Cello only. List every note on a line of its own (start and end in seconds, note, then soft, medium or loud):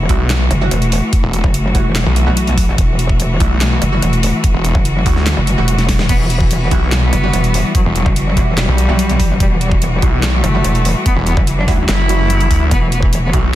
6.09 6.16 B3 loud
6.20 6.26 E3 medium
6.30 6.36 B3 medium
6.40 6.46 E3 medium
6.51 6.57 E3 medium
6.61 6.67 B3 loud
6.71 6.78 E3 medium
6.82 6.88 E3 medium
6.92 7.67 B3 loud
7.75 7.81 F#3 loud
7.85 7.91 B2 medium
7.96 8.02 F#3 loud
8.06 8.12 B2 medium
8.16 8.22 B2 medium
8.27 8.33 F#3 medium
8.37 8.43 B2 medium
8.48 8.54 B2 medium
8.58 9.32 G3 loud
9.40 9.47 G3 loud
9.51 9.57 B2 medium
9.61 9.67 G3 loud
9.72 9.78 B2 medium
9.82 9.88 B2 medium
9.92 9.98 G3 medium
10.02 10.09 B2 medium
10.13 10.19 B2 medium
10.23 10.98 A3 loud
11.06 11.12 B3 loud
11.16 11.22 E3 medium
11.27 11.33 B3 loud
11.37 11.43 E3 medium
11.47 11.53 E3 medium
11.58 11.64 D4 medium
11.68 11.74 E3 medium
11.79 11.84 E3 medium
11.89 12.63 E4 loud
12.71 12.78 B3 loud
12.82 12.88 E3 medium
12.92 12.98 B3 loud
13.03 13.09 E3 medium
13.13 13.19 E3 medium
13.23 13.29 B3 loud
13.33 13.40 E3 medium
13.44 13.50 E3 medium